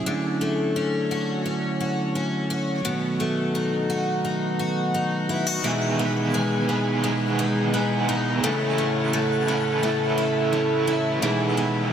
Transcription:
0.00 5.60 F#3 medium
0.00 0.41 C#4 medium
0.00 2.81 C#4 medium
0.00 0.76 E4 medium
0.00 2.81 E4 medium
0.00 0.13 G#4 medium
0.06 2.82 D3 medium
0.06 2.84 D3 medium
0.06 2.82 A3 soft
0.41 3.20 A3 medium
0.76 1.44 C#4 medium
1.11 1.80 F#4 medium
1.46 2.14 C#4 medium
1.81 2.50 F#4 medium
2.15 2.92 C#4 medium
2.50 3.89 F#4 medium
2.85 5.64 B2 medium
2.85 5.62 D#3 medium
2.85 5.62 A3 soft
2.85 5.62 B3 soft
2.85 5.62 F#4 medium
3.20 5.71 A3 medium
3.55 4.24 D#4 medium
3.90 4.58 F#4 medium
4.25 4.94 D#4 soft
4.59 5.29 F#4 medium
4.94 7.38 D#4 medium
5.29 5.47 E4 medium
5.47 5.71 F#4 medium
5.63 6.68 E2 medium
5.63 6.69 B2 medium
5.63 8.41 B2 medium
5.63 6.69 D#3 medium
5.63 9.14 E3 medium
5.63 8.41 G#3 medium
5.63 6.69 G#3 medium
5.63 6.69 B3 medium
5.63 8.41 D#4 medium
5.63 8.41 G#4 medium
5.63 6.67 G#4 medium
5.63 6.98 G#5 medium
5.86 7.17 B5 medium
5.99 6.68 B3 medium
6.34 7.02 G#3 medium
6.68 7.04 G#3 soft
6.68 7.72 B3 medium
6.68 7.04 B3 soft
6.68 7.03 G#4 medium
6.72 7.02 D#3 soft
7.03 7.71 D#3 medium
7.03 8.50 G#3 medium
7.03 7.73 G#3 medium
7.03 7.74 B3 medium
7.07 7.75 G#4 medium
7.39 8.08 D#4 medium
7.73 8.43 D#3 medium
7.73 8.44 G#3 medium
7.73 8.50 B3 medium
7.73 8.44 B3 medium
7.77 8.45 G#4 medium
8.09 8.50 D#4 medium
8.42 9.48 A2 medium
8.42 11.23 A2 medium
8.42 11.20 C#3 medium
8.42 9.81 E3 medium
8.42 11.20 A3 medium
8.42 9.48 A3 medium
8.42 9.48 C#4 medium
8.42 11.20 E4 medium
8.42 9.46 E4 medium
8.42 11.20 A4 medium
8.42 9.76 F#5 medium
8.65 9.96 A5 medium
8.78 9.47 C#4 medium
9.13 9.82 A3 medium
9.47 10.51 C#4 medium
9.47 9.83 C#4 medium
9.47 9.82 E4 medium
9.51 9.82 A3 soft
9.82 10.51 E3 medium
9.82 11.29 A3 medium
9.82 10.52 A3 medium
9.82 10.54 C#4 medium
9.86 10.56 E4 medium
10.18 10.87 E4 medium
10.52 11.23 E3 medium
10.52 11.23 A3 medium
10.52 11.29 C#4 medium
10.52 11.23 C#4 medium
10.56 11.24 E4 medium
10.88 11.93 E4 medium
11.22 11.93 E2 medium
11.22 11.93 B2 medium
11.22 11.93 D#3 medium
11.22 11.93 E3 medium
11.22 11.93 G#3 medium
11.22 11.93 B3 medium
11.22 11.93 D#4 medium
11.22 11.93 G#4 medium
11.57 11.93 B3 medium

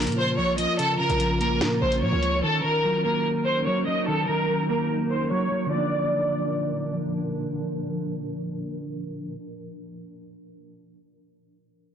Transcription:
0.00 0.38 C#3 medium
0.00 0.37 F3 medium
0.00 0.79 A#3 medium
0.00 5.68 C#4 medium
0.00 2.40 F4 medium
0.00 5.68 A#4 medium
0.00 closed hi-hat medium
0.07 0.39 A#2 loud
0.07 closed hi-hat medium
0.12 closed hi-hat soft
0.17 0.35 C5 medium
0.38 0.67 A#1 loud
0.38 0.57 F3 medium
0.38 0.55 C#5 medium
0.58 1.19 F3 medium
0.58 0.76 D#5 medium
0.58 closed hi-hat medium
0.79 0.98 C#3 medium
0.79 0.96 A4 loud
0.79 closed hi-hat medium
0.99 2.02 C#3 medium
0.99 1.38 A#4 medium
1.10 1.63 A#1 loud
1.10 closed hi-hat medium
1.20 2.01 F3 medium
1.20 closed hi-hat medium
1.40 2.43 A#3 loud
1.40 1.58 A#4 medium
1.40 closed hi-hat medium
1.61 1.81 A#2 loud
1.61 snare loud
1.61 closed hi-hat medium
1.82 2.04 A#1 loud
1.82 1.99 C5 medium
1.92 closed hi-hat medium
2.02 2.12 A#2 loud
2.02 2.21 F3 medium
2.02 2.41 C#5 medium
2.12 2.42 C#2 loud
2.23 2.43 F3 medium
2.23 closed hi-hat medium
2.43 2.62 D#3 medium
2.43 5.69 F#3 medium
2.43 5.69 D#4 medium
2.43 2.61 A4 medium
2.64 3.66 D#3 medium
2.64 3.02 A#4 medium
2.84 3.65 F#3 medium
3.05 4.08 A#3 medium
3.05 3.22 A#4 medium
3.46 3.63 C5 loud
3.66 3.86 F#3 medium
3.66 3.84 C#5 medium
3.87 4.48 F#3 medium
3.87 4.04 D#5 medium
4.08 4.27 D#3 medium
4.08 4.25 A4 loud
4.28 5.31 D#3 medium
4.28 4.67 A#4 medium
4.49 5.30 F#3 medium
4.69 5.72 A#3 medium
4.69 4.87 A#4 medium
5.10 5.28 C5 medium
5.31 5.50 F#3 medium
5.31 5.69 C#5 medium
5.51 5.70 F#3 medium
5.66 9.35 D3 medium
5.70 9.41 A#2 medium
5.70 9.39 F3 medium
5.70 9.41 F3 medium
5.70 9.41 D4 medium
5.70 9.41 A#4 medium
5.70 6.91 D5 medium
5.74 9.43 A#3 medium
5.74 9.47 D4 medium

